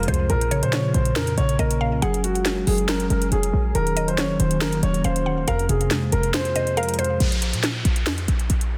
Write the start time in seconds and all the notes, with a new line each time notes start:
Already playing: F2 C3 F3 G#3 F4 G#4 C5
0.03 closed hi-hat
0.08 C2 F2 C5, closed hi-hat
0.14 closed hi-hat
0.30 A#1 A#2 C#4 A#4, closed hi-hat
0.41 closed hi-hat
0.51 C#3 C#5, closed hi-hat
0.63 A#2 C5, closed hi-hat
0.73 A#3 C#5, snare, closed hi-hat
0.94 A#1 A#2 C5, closed hi-hat
1.05 closed hi-hat
1.16 F2 A#4, snare, closed hi-hat
1.27 closed hi-hat
1.38 A#1 C#3 C#5, closed hi-hat
1.49 closed hi-hat
1.59 A#1 A#3 A#4 D#5, closed hi-hat
1.71 closed hi-hat
1.81 A#2 F5
1.92 C2
2.02 F#1 F#3 G#4 F#5, closed hi-hat
2.14 closed hi-hat
2.24 G#3 F#4, closed hi-hat
2.35 closed hi-hat
2.45 C#4, snare, closed hi-hat
2.67 F#1 F#3 G#4, open hi-hat
2.78 closed hi-hat
2.89 F#3 A#4, snare, closed hi-hat
3.00 closed hi-hat
3.10 F#1 G#3 A#4, closed hi-hat
3.22 closed hi-hat
3.32 F1 C#4 G#4, closed hi-hat
3.43 closed hi-hat
3.53 A#1 F#3
3.75 D#1 D#3 A#3 F#4 A#4, closed hi-hat
3.87 closed hi-hat
3.96 F#3 D#5, closed hi-hat
4.08 C5, closed hi-hat
4.18 F1 C#4 C#5, snare, closed hi-hat
4.40 D#1 D#3 C5, closed hi-hat
4.51 closed hi-hat
4.61 F#1 D#3 A#4, snare, closed hi-hat
4.73 closed hi-hat
4.83 D#1 F#3 C#5, closed hi-hat
4.94 closed hi-hat
5.04 D#1 C#4 C5 F5, closed hi-hat
5.16 closed hi-hat
5.26 D#3 F#5
5.48 F1 F2 F3 F4 G#4 A#4 C5 F5, closed hi-hat
5.59 closed hi-hat
5.69 F1 C3 G#4, closed hi-hat
5.81 closed hi-hat
5.91 G#3, snare, closed hi-hat
6.12 F1 F2 A#4, closed hi-hat
6.23 closed hi-hat
6.34 C5, snare, closed hi-hat
6.45 closed hi-hat
6.55 C3 C5 D#5, closed hi-hat
6.67 closed hi-hat
6.77 G#3 A#4 F5, closed hi-hat
6.83 closed hi-hat
6.89 closed hi-hat
6.94 closed hi-hat
6.99 F2 C5, closed hi-hat
7.04 closed hi-hat
7.20 A#1, closed hi-hat, downlifter
7.32 closed hi-hat
7.42 closed hi-hat
7.53 A#2, closed hi-hat
7.63 snare, closed hi-hat
7.85 A#1, closed hi-hat
7.96 closed hi-hat
8.06 F2, snare, closed hi-hat
8.18 closed hi-hat
8.28 A#1, closed hi-hat
8.40 closed hi-hat
8.50 A#1, closed hi-hat
8.61 closed hi-hat